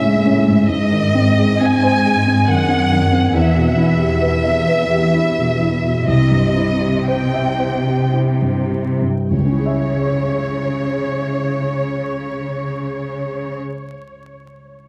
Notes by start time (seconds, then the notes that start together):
Already playing: C#2 G#2 A2 C#4 E4 G#4 C#5 E5
0.04 G#3
0.26 C#4
0.48 G#2
0.69 G#2 D#5
0.92 D#3
1.14 C4
1.38 G#4
1.61 C4 G#5
1.83 C5
2.05 G#4
2.27 C4
2.48 F#2 D#3 F#5
2.68 C4
2.91 D#3
3.12 C4
3.34 E2 E5
3.56 B2
3.78 E4
3.99 G4
4.21 B4
4.44 E5
4.68 B4
4.90 G4
5.14 E4
5.38 B2
5.61 E4
5.84 B2
6.07 C2 C3 D#5
6.31 G2
6.56 E4
6.81 G4
7.08 C5 G5
7.34 E5
7.60 C5
7.87 G4
8.14 E4
8.42 G2
8.71 E4
9.01 G2
9.31 C#2 C#3 C#5
9.38 C#3
9.45 C#4
9.52 E4
9.59 G#4
9.66 E5